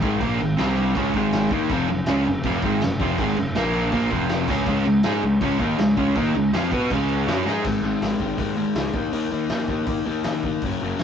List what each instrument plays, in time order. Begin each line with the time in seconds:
0.02 picked electric bass G#1, overdriven electric guitar G#2 D#3 G#3, kick, crash
0.20 picked electric bass A#1, overdriven electric guitar A#2 F3, kick, crash
0.25 overdriven electric guitar A#3
0.40 picked electric bass G#1, overdriven electric guitar G#2 D#3, crash
0.58 picked electric bass C2, overdriven electric guitar C3 G3 C4, snare, crash
0.77 crash
0.95 picked electric bass C#2, overdriven electric guitar C#3 G#3 C#4, kick, crash
1.14 picked electric bass G#1, overdriven electric guitar G#2 D#3 G#3, kick, crash
1.32 snare, crash
1.51 picked electric bass D#2, overdriven electric guitar D#3 A#3 D#4, kick, crash
1.69 picked electric bass F1, overdriven electric guitar F2 C3 F3, kick, crash
1.88 picked electric bass F1, overdriven electric guitar F#2 C#3, crash
2.06 picked electric bass C#2, overdriven electric guitar C#3 G#3 C#4, snare, crash
2.25 picked electric bass F1, overdriven electric guitar F#2 C#3, crash
2.43 picked electric bass F1, overdriven electric guitar F2 C3 F3, kick, crash
2.62 picked electric bass G#1, overdriven electric guitar G#2 D#3 G#3, kick, crash
2.81 picked electric bass F1, overdriven electric guitar F#2 C#3, snare, crash
3.00 picked electric bass F1, overdriven electric guitar F2 C3 F3, kick, crash
3.18 picked electric bass G#1, overdriven electric guitar G#2 D#3 G#3, kick, crash
3.36 picked electric bass F1, overdriven electric guitar F#2 C#3, crash
3.55 picked electric bass A#1, overdriven electric guitar A#2 F3 A#3, snare, crash
3.73 crash
3.92 picked electric bass A#1, overdriven electric guitar A#2 F3 A#3, kick, crash
4.11 picked electric bass F1, overdriven electric guitar F2 C3 F3, kick, crash
4.29 snare, crash
4.48 picked electric bass C#2, overdriven electric guitar C#3 G#3 C#4, kick, crash
4.66 picked electric bass C#2, overdriven electric guitar C#3 G#3 C#4, kick, crash
4.85 picked electric bass C#2, overdriven electric guitar C#3 G#3, crash
5.03 picked electric bass G#2, overdriven electric guitar G#3 D#4 G#4, snare, crash
5.22 picked electric bass C#2, overdriven electric guitar C#3 G#3, crash
5.41 picked electric bass C#2, overdriven electric guitar C#3 G#3 C#4, kick, crash
5.60 picked electric bass D#2, overdriven electric guitar D#3 A#3 D#4, kick, crash
5.78 picked electric bass C#2, overdriven electric guitar C#3 G#3, snare, crash
5.97 picked electric bass C#2, overdriven electric guitar C#3 G#3 C#4, kick, crash
6.16 picked electric bass D#2, overdriven electric guitar D#3 A#3 D#4, kick, crash
6.34 picked electric bass C#2, overdriven electric guitar C#3 G#3, crash
6.53 picked electric bass F2, overdriven electric guitar F3 C4 F4, snare, crash
6.71 picked electric bass B2, overdriven electric guitar B3 F#4 B4, kick, crash
6.90 picked electric bass C#2, overdriven electric guitar C#3 G#3 C#4, kick, crash
7.09 crash
7.27 picked electric bass F#2, overdriven electric guitar F#3 C#4 F#4, snare, crash
7.46 picked electric bass G#2, overdriven electric guitar G#3 D#4 G#4, snare
7.64 picked electric bass G#1, overdriven electric guitar G#2 D#3 G#3, kick, crash
7.82 picked electric bass G#1, overdriven electric guitar G#2 D#3 G#3
8.01 picked electric bass G#1, overdriven electric guitar G#2 D#3 G#3, snare, open hi-hat
8.20 picked electric bass G#1, overdriven electric guitar G#2 D#3 G#3, kick
8.38 picked electric bass D#2, overdriven electric guitar G#2 D#3 G#3, kick, open hi-hat
8.57 overdriven electric guitar G#2 D#3 G#3
8.75 picked electric bass C#2, overdriven electric guitar G#2 D#3 G#3, snare, open hi-hat
8.94 picked electric bass D#2, overdriven electric guitar D#3 A#3 D#4, kick
9.13 picked electric bass D#2, overdriven electric guitar D#3 A#3 D#4, open hi-hat
9.31 picked electric bass D#2, overdriven electric guitar D#3 A#3 D#4
9.49 picked electric bass D#2, overdriven electric guitar D#3 A#3 D#4, snare, open hi-hat
9.68 picked electric bass D#2, overdriven electric guitar D#3 A#3 D#4, kick
9.86 picked electric bass D#2, overdriven electric guitar D#3 A#3 D#4, kick, open hi-hat
10.06 picked electric bass D#2, overdriven electric guitar D#3 A#3 D#4
10.24 picked electric bass D#2, overdriven electric guitar D#3 A#3 D#4, snare, open hi-hat
10.43 overdriven electric guitar D#3 A#3 D#4, kick
10.61 picked electric bass F#1, overdriven electric guitar F#2 C#3 F#3, kick, open hi-hat
10.82 picked electric bass F#1, overdriven electric guitar F#2 C#3 F#3
10.99 picked electric bass F#1, overdriven electric guitar F#2, snare, open hi-hat